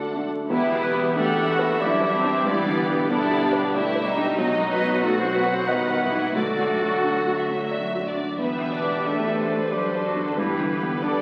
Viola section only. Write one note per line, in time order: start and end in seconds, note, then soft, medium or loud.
0.00 0.25 D4 soft
0.50 0.82 B3 medium
0.50 1.13 G4 medium
0.84 1.17 G3 medium
1.19 1.50 A3 medium
1.19 1.82 F#5 medium
1.51 1.82 B3 medium
1.84 2.15 D4 soft
1.84 2.47 E4 soft
2.16 2.47 C4 medium
2.48 3.09 B3 medium
2.48 2.79 G4 medium
2.80 3.11 G4 medium
3.10 3.73 B3 medium
3.10 3.43 A4 medium
3.44 3.74 G4 medium
3.75 4.07 A3 medium
3.75 4.37 G4 medium
4.06 4.38 G3 medium
4.39 5.02 F#3 medium
4.39 5.67 F#4 medium
5.03 5.67 F#3 medium
5.68 6.02 D#3 medium
5.68 6.34 F#4 medium
6.01 6.35 E3 medium
6.35 8.16 F#3 medium
6.35 8.16 F#4 medium
8.40 8.71 B3 soft
8.40 9.68 G4 soft
8.74 9.71 D4 medium
9.73 10.37 D4 soft
9.73 10.38 A4 soft
10.38 11.22 B3 medium
10.38 10.69 G4 medium
10.70 11.01 G4 medium
11.03 11.22 A4 medium